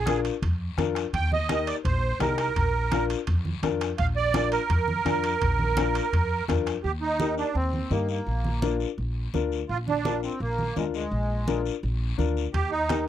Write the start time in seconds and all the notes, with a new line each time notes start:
Already playing: A#1 G#4
0.06 D4 F4 A#4, bombo rim, high conga, high timbale, short guiro
0.25 high timbale, short guiro
0.42 F2, bombo low, high conga, high timbale, long guiro
0.77 F2 D4 F4 A#4, bombo rim, high conga, high timbale, short guiro
0.95 bombo rim, high timbale, short guiro
1.13 D#2 G5, bombo low, high conga, high timbale, long guiro
1.32 D#5, high conga
1.49 D#4 G4 A#4, bombo rim, high conga, high timbale, short guiro
1.67 D5, high timbale, short guiro
1.85 A#1 C5, bombo low, high conga, high timbale, long guiro
2.20 C2 D#4 G4 A#4, bombo rim, high conga, high timbale, low timbale, short guiro
2.38 A#4, bombo rim, high timbale, short guiro
2.56 A#1, bombo low, high conga, high timbale, long guiro
2.92 D4 F4 A#4, bombo rim, high conga, high timbale, short guiro
3.10 high timbale, short guiro
3.27 F2, bombo low, high conga, high timbale, long guiro
3.45 high conga
3.63 F2 D4 F4 A#4, bombo rim, high conga, high timbale, short guiro
3.81 bombo rim, high timbale, short guiro
3.98 A#1 F5, bombo low, high conga, high timbale, long guiro
4.16 D5
4.34 D4 F4 A#4, bombo rim, high conga, high timbale, short guiro
4.52 A#4, high timbale, short guiro
4.70 F2, bombo low, high conga, high timbale, long guiro
4.88 high conga
5.05 F2 D4 F4 A#4, bombo rim, high conga, high timbale, short guiro
5.24 high timbale, short guiro
5.41 A#1, bombo low, high conga, high timbale, long guiro
5.59 high conga
5.77 D4 F4 A#4, bombo rim, high conga, high timbale, short guiro
5.95 high timbale, short guiro
6.13 F2, bombo low, high conga, high timbale, long guiro
6.48 F2 D4 F4 A#4, bombo low, bombo rim, high conga, high timbale, short guiro
6.66 bombo rim, high timbale, short guiro
6.84 D#2 G4, high conga, long guiro
7.02 D#4
7.20 D#4 G4 A#4, high conga, short guiro
7.37 D4, short guiro
7.55 D#2 C4, high conga, long guiro
7.73 high conga
7.91 G2 A#3 D#4 G4 A#4, high conga, short guiro
8.09 A#3, short guiro
8.27 A#1, high conga, long guiro
8.44 high conga
8.62 D4 F4 A#4, high conga, short guiro
8.80 short guiro
8.98 A#1, high conga, long guiro
9.34 D2 D4 F4 A#4, high conga, short guiro
9.52 short guiro
9.69 A#1 F4, high conga, long guiro
9.88 D4, high conga
10.05 D4 F4 A#4, high conga, short guiro
10.23 C4, short guiro
10.40 A#1 A#3, high conga, long guiro
10.59 high conga
10.76 D2 G#3 D4 F4 A#4, high conga, short guiro
10.94 G#3, short guiro
11.12 A#1, high conga, long guiro
11.47 D4 F4 A#4, high conga, short guiro
11.65 short guiro
11.83 A#1, high conga, long guiro
12.18 D2 D4 F4 A#4, high conga, short guiro
12.37 short guiro
12.54 D#2 G4, bombo low, high conga, high timbale, long guiro
12.71 D#4
12.89 D#4 G4 A#4, bombo rim, high conga, high timbale, short guiro